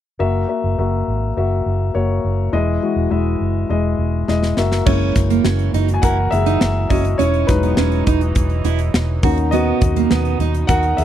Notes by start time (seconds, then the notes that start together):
0.19 F#1 A#3 F#4 E5
0.48 A#3 F#4 E5
0.64 F#1
0.78 F#1 A#3 F#4 E5
1.08 G#1
1.37 F#1 A#3 F#4 E5
1.66 F#1
1.94 F#1 A#3 F#4 C#5
2.24 F#1
2.53 E1 E3 G#3 E4 D#5
2.82 G#3 E4 F#4
2.96 E1
3.10 E1 G#3 E4 E5
3.40 F#1
3.69 E1 G#3 E4 D#5
3.99 E1
4.28 E1 G#3 E4 D#5, snare
4.43 snare
4.57 F#1 A#3 F#4 E5, snare
4.72 snare
4.86 F#1 E3 G#3 A#3 C#4 E4 F#4 C#5, kick, crash
5.15 F#1, kick, snare, closed hi-hat
5.30 A#3, closed hi-hat
5.45 F#1 C#4, snare
5.59 closed hi-hat
5.74 F#1 D#4, closed hi-hat
5.88 closed hi-hat
5.94 G#5
6.02 F#1 E4 A#4 F#5, kick, closed hi-hat
6.31 F#1 G#3 A#3 E4 G#4 E5, closed hi-hat
6.46 D#4, closed hi-hat
6.61 F#1, snare
6.89 F#1 C#4 F#4 D#5, kick, open hi-hat
7.05 closed hi-hat
7.18 E1 E3 G#3 C#4 D#4 E4 C#5, closed hi-hat
7.34 closed hi-hat
7.47 E1 F#3 G#3 D#4 B4, kick, snare, closed hi-hat
7.63 B3, closed hi-hat
7.77 E1 C#4, snare
7.92 closed hi-hat
8.07 E1 D#4, kick, closed hi-hat
8.21 closed hi-hat
8.35 E1, kick, closed hi-hat
8.50 closed hi-hat
8.65 E1 E4, closed hi-hat
8.79 closed hi-hat
8.94 E1, snare
9.23 D#2 A#2 B2 A#3 C#4 D#4 F#4, kick, open hi-hat
9.38 closed hi-hat
9.51 B3 F#4 D#5, closed hi-hat
9.81 D#2, kick, closed hi-hat
9.96 A#3, closed hi-hat
10.11 D#2 B3, snare
10.25 closed hi-hat
10.39 D#2 D#4, closed hi-hat
10.54 closed hi-hat
10.67 D#2 F#4 A#4 F#5, kick, closed hi-hat
10.83 closed hi-hat
10.97 D#2 G#4 E5, closed hi-hat